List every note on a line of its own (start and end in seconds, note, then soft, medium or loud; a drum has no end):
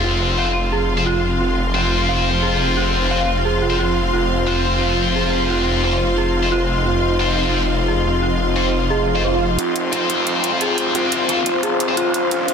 0.00 4.11 F1 medium
0.00 0.36 C4 medium
0.00 12.54 C4 medium
0.00 0.36 F4 medium
0.00 9.55 F4 medium
0.00 12.54 F4 medium
0.00 0.36 C5 medium
0.00 9.55 C5 medium
0.00 4.11 F5 medium
0.00 12.54 F5 medium
0.00 12.54 C6 medium
0.00 downlifter medium
0.04 0.14 F4 medium
0.38 0.47 C4 medium
0.38 0.47 F4 medium
0.38 0.47 C5 medium
0.38 0.48 F5 loud
0.72 0.82 G#4 loud
0.98 1.03 C4 medium
0.98 1.03 F4 medium
0.98 1.03 C5 medium
1.06 1.21 F4 loud
1.40 1.50 F4 medium
1.74 2.15 C4 medium
1.74 1.84 F4 medium
1.74 2.15 F4 medium
1.74 2.15 C5 medium
2.09 2.19 F5 medium
2.17 3.09 C4 medium
2.17 3.09 F4 medium
2.17 3.09 C5 medium
2.43 2.53 G#4 medium
2.77 2.87 F4 medium
3.11 3.20 C4 medium
3.11 3.20 F4 medium
3.11 3.20 C5 medium
3.11 3.21 F5 loud
3.45 3.55 G#4 loud
3.62 3.68 F4 medium
3.70 3.76 C4 medium
3.70 3.76 F4 medium
3.70 3.76 C5 medium
3.79 3.85 F4 loud
4.13 9.57 F1 medium
4.13 4.23 F4 medium
4.13 9.56 D#5 medium
4.47 4.88 C4 medium
4.47 4.57 F4 medium
4.47 4.88 F4 medium
4.47 4.88 C5 medium
4.81 4.91 F5 medium
4.90 5.82 C4 medium
4.90 5.82 F4 medium
4.90 5.82 C5 medium
5.15 5.25 G#4 medium
5.50 5.59 F4 medium
5.83 5.92 C4 medium
5.83 5.92 F4 medium
5.83 5.94 C5 medium
5.83 5.92 C5 medium
6.18 6.28 G#4 medium
6.43 6.49 C4 medium
6.43 6.49 F4 medium
6.43 6.49 C5 medium
6.52 6.67 F4 loud
6.86 6.96 F4 medium
7.20 7.61 C4 medium
7.20 7.30 F4 medium
7.20 7.61 F4 medium
7.20 7.61 C5 medium
7.54 7.64 F5 medium
7.88 7.98 G#4 medium
8.22 8.32 F4 medium
8.56 8.65 C4 medium
8.56 8.65 F4 medium
8.56 8.66 C5 medium
8.56 8.65 C5 medium
8.90 9.00 G#4 loud
8.90 swell medium
9.16 9.21 C4 medium
9.16 9.21 F4 medium
9.16 9.21 C5 medium
9.24 9.34 C5 medium
9.59 10.94 F1 loud
9.59 9.69 F4 medium
9.59 12.54 F4 medium
9.59 12.29 C5 medium
9.59 12.54 F5 medium
9.59 closed hi-hat medium
9.59 riser medium
9.76 closed hi-hat medium
9.92 10.33 C4 medium
9.92 10.03 F4 medium
9.92 10.33 F4 medium
9.92 10.33 C5 medium
9.92 closed hi-hat medium
10.10 closed hi-hat medium
10.27 10.37 F5 medium
10.27 closed hi-hat medium
10.35 11.27 C4 medium
10.35 11.27 F4 medium
10.35 11.27 C5 medium
10.44 closed hi-hat medium
10.61 10.71 G#4 medium
10.61 closed hi-hat medium
10.78 closed hi-hat medium
10.95 11.45 C2 loud
10.95 11.05 F4 medium
10.95 closed hi-hat medium
11.12 closed hi-hat medium
11.29 11.38 C4 medium
11.29 11.38 F4 medium
11.29 11.39 C5 medium
11.29 11.38 C5 medium
11.29 closed hi-hat medium
11.46 12.30 F1 loud
11.46 closed hi-hat medium
11.63 11.73 G#4 loud
11.63 closed hi-hat medium
11.80 closed hi-hat loud
11.88 11.94 C4 medium
11.88 11.94 F4 medium
11.88 11.94 C5 medium
11.97 12.12 F4 loud
11.97 closed hi-hat medium
12.14 closed hi-hat loud
12.31 12.54 F1 loud
12.31 12.41 F4 medium
12.31 12.54 A#4 medium
12.31 closed hi-hat medium
12.48 closed hi-hat medium